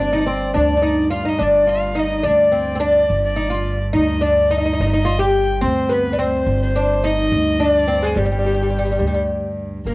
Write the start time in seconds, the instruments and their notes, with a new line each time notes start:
Already playing: upright bass G1, cello G2
0.00 oud D4, violin D5
0.13 oud D#4
0.26 oud C4
0.54 upright bass D2, oud D4, violin D5
0.77 oud D4
0.82 oud D#4
1.10 oud F4, violin F5
1.25 oud D#4, violin D#5
1.39 upright bass G1, oud D4, violin D5
1.67 oud F4, violin F5
1.95 oud D#4, violin D#5
2.23 upright bass D2, oud D4, violin D5
2.52 oud C4
2.75 oud C4
2.80 oud D4, violin D5
3.10 upright bass G1, cello G2
3.25 violin D5
3.36 oud D#4
3.50 oud F4
3.93 upright bass D2, oud D#4, violin D#5
4.21 oud D4, violin D5
4.51 oud D#4, violin D#5
4.58 oud D#4
4.65 oud D#4
4.73 oud D#4
4.80 upright bass G1, oud D#4
4.86 oud D#4
4.93 oud D#4, violin D#5
5.05 oud F4
5.19 oud G4, violin G5
5.61 upright bass D2, oud C4, violin C5
5.89 oud B3, violin B4
6.13 oud D4
6.19 oud C4, violin C5
6.46 upright bass G1, cello G2
6.63 violin C5
6.76 oud D4
7.04 oud D#4, violin D#5
7.32 upright bass D2
7.60 oud D4, violin D5
7.88 oud C4
8.02 oud G#3, violin G#4
8.16 upright bass G1, oud G3, violin G4
8.25 oud G3
8.31 oud G3
8.39 oud G3
8.46 oud G3
8.54 oud G3
8.62 oud G3
8.70 oud G3
8.78 oud G3
8.85 oud G3
8.92 oud G3
8.99 upright bass D2, oud G3
9.07 oud G3
9.14 oud G3
9.85 upright bass G1, cello G2, oud A#3, violin A#4